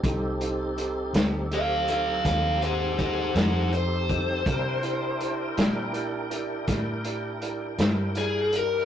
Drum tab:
HH |xxxxxxxxxxxx|xxxxxxxxxxxx|
SD |---o--o--o--|---o--o--o--|
BD |o-----o-o--o|o-----o-----|